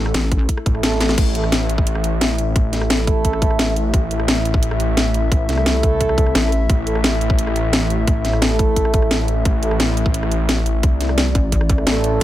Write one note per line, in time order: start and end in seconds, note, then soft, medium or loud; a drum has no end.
0.00 0.13 A1 loud
0.00 1.14 A3 medium
0.00 1.14 E4 medium
0.00 1.17 A4 loud
0.06 cross-stick medium
0.14 0.47 A1 loud
0.14 snare loud
0.14 closed hi-hat loud
0.32 kick loud
0.32 closed hi-hat medium
0.49 kick medium
0.49 closed hi-hat loud
0.57 cross-stick medium
0.66 1.16 A1 loud
0.66 kick loud
0.66 closed hi-hat medium
0.75 0.82 A3 medium
0.75 0.82 E4 medium
0.75 0.82 A4 medium
0.75 cross-stick soft
0.83 1.17 A3 loud
0.83 1.17 E4 medium
0.83 1.17 A4 loud
0.83 snare loud
0.83 closed hi-hat loud
0.92 snare medium
1.01 snare medium
1.01 closed hi-hat medium
1.09 snare medium
1.18 2.54 A1 loud
1.18 12.23 A3 medium
1.18 12.23 E4 medium
1.18 10.79 E5 loud
1.18 kick loud
1.18 closed hi-hat loud
1.18 crash loud
1.35 1.46 A3 medium
1.35 1.46 E4 medium
1.35 1.46 A4 loud
1.35 closed hi-hat medium
1.44 cross-stick medium
1.52 snare loud
1.52 closed hi-hat loud
1.69 closed hi-hat medium
1.78 kick loud
1.87 closed hi-hat loud
1.95 cross-stick medium
2.04 closed hi-hat medium
2.21 snare loud
2.21 closed hi-hat loud
2.38 closed hi-hat medium
2.56 3.92 A1 loud
2.56 kick loud
2.56 closed hi-hat medium
2.73 3.66 A3 loud
2.73 3.66 E4 loud
2.73 3.66 A4 loud
2.73 snare soft
2.73 closed hi-hat medium
2.81 cross-stick medium
2.90 snare loud
2.90 closed hi-hat loud
3.07 kick loud
3.07 closed hi-hat medium
3.25 kick medium
3.25 closed hi-hat loud
3.33 cross-stick medium
3.42 kick loud
3.42 closed hi-hat medium
3.51 cross-stick soft
3.59 snare loud
3.59 closed hi-hat loud
3.68 3.74 A3 loud
3.68 3.74 E4 medium
3.68 3.74 A4 loud
3.76 3.83 A3 medium
3.76 3.83 E4 medium
3.76 3.83 A4 medium
3.76 closed hi-hat medium
3.94 5.30 A1 loud
3.94 kick loud
3.94 closed hi-hat medium
4.11 4.22 A3 medium
4.11 4.22 E4 medium
4.11 4.22 A4 loud
4.11 closed hi-hat medium
4.20 cross-stick medium
4.28 snare loud
4.28 closed hi-hat medium
4.45 closed hi-hat medium
4.54 kick loud
4.63 closed hi-hat medium
4.71 cross-stick medium
4.80 closed hi-hat medium
4.97 snare loud
4.97 closed hi-hat loud
5.14 closed hi-hat medium
5.32 5.47 A1 loud
5.32 kick loud
5.32 closed hi-hat medium
5.49 6.34 C2 loud
5.49 6.42 A3 loud
5.49 6.42 E4 loud
5.49 6.42 A4 loud
5.49 snare soft
5.49 closed hi-hat medium
5.57 cross-stick medium
5.66 snare loud
5.66 closed hi-hat medium
5.83 kick loud
5.83 closed hi-hat medium
6.01 kick medium
6.01 closed hi-hat medium
6.09 cross-stick medium
6.18 kick loud
6.18 closed hi-hat medium
6.26 cross-stick soft
6.35 6.68 A1 loud
6.35 snare loud
6.35 closed hi-hat medium
6.44 6.50 A3 loud
6.44 6.50 E4 medium
6.44 6.50 A4 loud
6.52 6.59 A3 medium
6.52 6.59 E4 medium
6.52 6.59 A4 medium
6.52 closed hi-hat medium
6.70 8.06 A1 loud
6.70 kick loud
6.70 closed hi-hat medium
6.87 6.98 A3 medium
6.87 6.98 E4 medium
6.87 6.98 A4 loud
6.87 closed hi-hat medium
6.95 cross-stick medium
7.04 snare loud
7.04 closed hi-hat medium
7.21 closed hi-hat medium
7.30 kick loud
7.39 closed hi-hat medium
7.47 cross-stick medium
7.56 closed hi-hat medium
7.73 snare loud
7.73 closed hi-hat medium
7.90 closed hi-hat medium
8.07 9.44 A1 loud
8.07 kick loud
8.07 closed hi-hat medium
8.25 9.18 A3 loud
8.25 9.18 E4 loud
8.25 9.18 A4 loud
8.25 snare soft
8.25 closed hi-hat medium
8.33 cross-stick medium
8.42 snare loud
8.42 closed hi-hat medium
8.59 kick loud
8.59 closed hi-hat medium
8.76 kick medium
8.76 closed hi-hat medium
8.85 cross-stick medium
8.94 kick loud
8.94 closed hi-hat medium
9.02 cross-stick soft
9.11 snare loud
9.11 closed hi-hat medium
9.20 9.26 A3 loud
9.20 9.26 E4 medium
9.20 9.26 A4 loud
9.28 9.35 A3 medium
9.28 9.35 E4 medium
9.28 9.35 A4 medium
9.28 closed hi-hat medium
9.45 10.82 A1 medium
9.45 kick loud
9.45 closed hi-hat loud
9.63 9.74 A3 medium
9.63 9.74 E4 medium
9.63 9.74 A4 loud
9.63 closed hi-hat medium
9.71 cross-stick medium
9.80 snare loud
9.80 closed hi-hat loud
9.97 closed hi-hat medium
10.06 kick loud
10.14 closed hi-hat medium
10.23 cross-stick medium
10.32 closed hi-hat medium
10.49 snare loud
10.49 closed hi-hat loud
10.66 closed hi-hat medium
10.83 11.34 C2 loud
10.83 12.23 D5 loud
10.83 kick loud
10.83 closed hi-hat loud
11.01 snare soft
11.01 closed hi-hat medium
11.09 cross-stick medium
11.18 snare loud
11.18 closed hi-hat loud
11.35 11.85 A1 loud
11.35 kick loud
11.35 closed hi-hat medium
11.52 kick medium
11.52 closed hi-hat loud
11.61 cross-stick medium
11.69 kick loud
11.69 closed hi-hat medium
11.78 11.85 A3 medium
11.78 11.85 E4 medium
11.78 11.85 A4 medium
11.78 cross-stick soft
11.87 12.20 A1 loud
11.87 12.23 A3 loud
11.87 12.23 E4 loud
11.87 12.23 A4 loud
11.87 snare loud
11.87 closed hi-hat loud
12.04 closed hi-hat medium